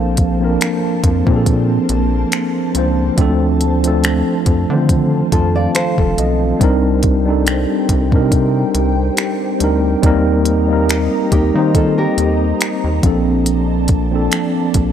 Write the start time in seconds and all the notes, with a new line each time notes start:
Already playing: A#1 F3 A#3 C4 D4 A4 C5 F5 A5
0.17 kick, closed hi-hat
0.40 F3 A#3 C4 D4
0.44 A#4
0.61 finger snap, closed hi-hat
1.04 F2, kick, closed hi-hat
1.25 A#2 F3 A#3 C4 D4, kick
1.30 G#4
1.36 A4
1.46 kick, closed hi-hat
1.89 A#1, closed hi-hat
2.32 finger snap, closed hi-hat
2.74 C#2 F3 A#3 C4 D4, closed hi-hat
2.78 C5
3.16 D2 F3 A3 C4 D4 F4, kick, closed hi-hat
3.21 A4
3.61 closed hi-hat
3.83 F3 A3 C4 D4, closed hi-hat
3.88 A4
4.04 finger snap, closed hi-hat
4.46 F2, kick, closed hi-hat
4.69 D3 D#3 A3 C4 D4
4.73 F3 C5
4.89 kick, closed hi-hat
5.32 F2 F4 A4 A5, kick, closed hi-hat
5.55 D5 F5
5.75 A4 C5 F5, finger snap, closed hi-hat
5.98 F1 F4 A4, kick
6.18 B1 D#5, closed hi-hat
6.59 C2 G3 C4 D4 D#4 G4 G5, kick, closed hi-hat
6.64 A#4
7.03 kick, closed hi-hat
7.26 G3 C4 D4 D#4
7.30 A4
7.47 finger snap, closed hi-hat
7.89 C2, kick, closed hi-hat
8.11 C3 G3 C4 D4 D#4, kick
8.15 A#4
8.32 kick, closed hi-hat
8.75 C2, closed hi-hat
9.17 finger snap, closed hi-hat
9.59 D2 G3 C4 D4 D#4, closed hi-hat
9.64 A#4
10.02 D#2 G3 A#3 C4 D#4 G4 D#5 A#5, kick, closed hi-hat
10.06 A#4
10.45 closed hi-hat
10.68 G3 A#3 C4 D#4
10.73 A#4
10.89 finger snap, closed hi-hat
11.32 D#2 D#4 G4, kick, closed hi-hat
11.54 D#3 G3 A#3 C4 D#4
11.58 C5
11.75 F4 A4, kick, closed hi-hat
11.98 G4 A#4
12.18 D#2, closed hi-hat
12.61 finger snap, closed hi-hat
12.84 D#2
13.02 A#1 F3 A#3 C4 D4 D5 A5, kick, closed hi-hat
13.07 A4
13.46 closed hi-hat
13.88 kick, closed hi-hat
14.11 F3 A#3 C4 D4
14.16 A4
14.32 finger snap, closed hi-hat
14.74 A#1 G5, kick, closed hi-hat